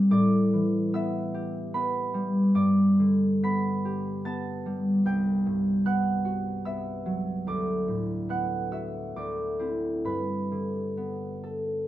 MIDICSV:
0, 0, Header, 1, 2, 480
1, 0, Start_track
1, 0, Key_signature, 1, "major"
1, 0, Tempo, 815217
1, 61, Time_signature, 3, 2, 24, 8
1, 1500, Tempo, 879765
1, 1980, Tempo, 823045
1, 2460, Tempo, 800000
1, 3900, Tempo, 827586
1, 4860, Tempo, 877193
1, 5820, Tempo, 916031
1, 6772, End_track
2, 0, Start_track
2, 0, Title_t, "Harp"
2, 0, Program_c, 0, 46
2, 0, Note_on_c, 0, 52, 50
2, 0, Note_on_c, 0, 55, 62
2, 0, Note_on_c, 0, 59, 51
2, 0, Note_on_c, 0, 60, 56
2, 0, Note_on_c, 0, 67, 54
2, 0, Note_on_c, 0, 71, 64
2, 0, Note_on_c, 0, 72, 63
2, 0, Note_on_c, 0, 83, 84
2, 0, Note_on_c, 0, 84, 81
2, 62, Note_on_c, 0, 45, 66
2, 66, Note_on_c, 0, 86, 91
2, 71, Note_on_c, 0, 74, 67
2, 76, Note_off_c, 0, 52, 0
2, 81, Note_off_c, 0, 84, 0
2, 82, Note_off_c, 0, 60, 0
2, 84, Note_off_c, 0, 72, 0
2, 314, Note_on_c, 0, 52, 52
2, 395, Note_off_c, 0, 59, 0
2, 550, Note_on_c, 0, 59, 59
2, 553, Note_on_c, 0, 88, 91
2, 560, Note_on_c, 0, 76, 74
2, 784, Note_off_c, 0, 67, 0
2, 791, Note_on_c, 0, 67, 56
2, 893, Note_off_c, 0, 83, 0
2, 895, Note_off_c, 0, 71, 0
2, 1018, Note_off_c, 0, 59, 0
2, 1023, Note_on_c, 0, 59, 60
2, 1025, Note_on_c, 0, 83, 87
2, 1034, Note_on_c, 0, 71, 64
2, 1253, Note_off_c, 0, 55, 0
2, 1260, Note_on_c, 0, 55, 60
2, 1493, Note_off_c, 0, 86, 0
2, 1499, Note_off_c, 0, 74, 0
2, 1500, Note_on_c, 0, 43, 69
2, 1502, Note_on_c, 0, 86, 83
2, 1505, Note_on_c, 0, 74, 64
2, 1519, Note_off_c, 0, 45, 0
2, 1521, Note_off_c, 0, 52, 0
2, 1744, Note_on_c, 0, 50, 52
2, 1977, Note_off_c, 0, 59, 0
2, 1983, Note_off_c, 0, 83, 0
2, 1983, Note_on_c, 0, 59, 57
2, 1985, Note_on_c, 0, 95, 95
2, 1990, Note_on_c, 0, 83, 78
2, 2219, Note_off_c, 0, 67, 0
2, 2226, Note_on_c, 0, 67, 56
2, 2453, Note_off_c, 0, 59, 0
2, 2459, Note_on_c, 0, 59, 56
2, 2461, Note_on_c, 0, 93, 94
2, 2466, Note_on_c, 0, 81, 68
2, 2698, Note_off_c, 0, 55, 0
2, 2705, Note_on_c, 0, 55, 57
2, 2813, Note_off_c, 0, 88, 0
2, 2821, Note_off_c, 0, 76, 0
2, 2941, Note_on_c, 0, 36, 63
2, 2946, Note_on_c, 0, 91, 82
2, 2949, Note_on_c, 0, 79, 68
2, 2961, Note_off_c, 0, 43, 0
2, 2961, Note_off_c, 0, 86, 0
2, 2964, Note_off_c, 0, 50, 0
2, 2964, Note_off_c, 0, 74, 0
2, 2964, Note_off_c, 0, 81, 0
2, 3187, Note_on_c, 0, 43, 51
2, 3276, Note_off_c, 0, 93, 0
2, 3303, Note_off_c, 0, 71, 0
2, 3418, Note_off_c, 0, 59, 0
2, 3423, Note_on_c, 0, 59, 53
2, 3425, Note_on_c, 0, 90, 88
2, 3431, Note_on_c, 0, 78, 67
2, 3659, Note_on_c, 0, 66, 49
2, 3894, Note_off_c, 0, 59, 0
2, 3900, Note_on_c, 0, 59, 52
2, 3901, Note_on_c, 0, 88, 82
2, 3906, Note_on_c, 0, 76, 65
2, 4136, Note_on_c, 0, 54, 55
2, 4297, Note_off_c, 0, 95, 0
2, 4302, Note_off_c, 0, 83, 0
2, 4374, Note_on_c, 0, 38, 55
2, 4380, Note_on_c, 0, 86, 78
2, 4384, Note_on_c, 0, 74, 62
2, 4398, Note_off_c, 0, 36, 0
2, 4399, Note_off_c, 0, 55, 0
2, 4399, Note_off_c, 0, 67, 0
2, 4399, Note_off_c, 0, 91, 0
2, 4400, Note_off_c, 0, 43, 0
2, 4401, Note_off_c, 0, 79, 0
2, 4613, Note_on_c, 0, 45, 49
2, 4846, Note_off_c, 0, 59, 0
2, 4848, Note_off_c, 0, 90, 0
2, 4851, Note_on_c, 0, 59, 52
2, 4853, Note_off_c, 0, 78, 0
2, 4857, Note_on_c, 0, 90, 77
2, 4860, Note_on_c, 0, 78, 66
2, 5079, Note_off_c, 0, 66, 0
2, 5079, Note_off_c, 0, 88, 0
2, 5084, Note_on_c, 0, 66, 45
2, 5085, Note_off_c, 0, 76, 0
2, 5086, Note_on_c, 0, 88, 71
2, 5091, Note_on_c, 0, 76, 58
2, 5322, Note_off_c, 0, 86, 0
2, 5323, Note_off_c, 0, 38, 0
2, 5329, Note_on_c, 0, 38, 57
2, 5329, Note_on_c, 0, 86, 69
2, 5330, Note_off_c, 0, 74, 0
2, 5336, Note_on_c, 0, 74, 56
2, 5345, Note_off_c, 0, 66, 0
2, 5346, Note_off_c, 0, 45, 0
2, 5346, Note_off_c, 0, 59, 0
2, 5347, Note_off_c, 0, 90, 0
2, 5348, Note_off_c, 0, 54, 0
2, 5349, Note_off_c, 0, 78, 0
2, 5564, Note_on_c, 0, 60, 45
2, 5569, Note_on_c, 0, 64, 46
2, 5812, Note_on_c, 0, 43, 53
2, 5816, Note_on_c, 0, 83, 65
2, 5820, Note_on_c, 0, 71, 47
2, 5835, Note_off_c, 0, 88, 0
2, 5836, Note_off_c, 0, 60, 0
2, 5837, Note_off_c, 0, 64, 0
2, 5838, Note_off_c, 0, 38, 0
2, 5838, Note_off_c, 0, 76, 0
2, 6059, Note_on_c, 0, 50, 46
2, 6298, Note_on_c, 0, 59, 45
2, 6540, Note_on_c, 0, 69, 47
2, 6772, Note_off_c, 0, 43, 0
2, 6772, Note_off_c, 0, 50, 0
2, 6772, Note_off_c, 0, 59, 0
2, 6772, Note_off_c, 0, 69, 0
2, 6772, Note_off_c, 0, 71, 0
2, 6772, Note_off_c, 0, 74, 0
2, 6772, Note_off_c, 0, 83, 0
2, 6772, Note_off_c, 0, 86, 0
2, 6772, End_track
0, 0, End_of_file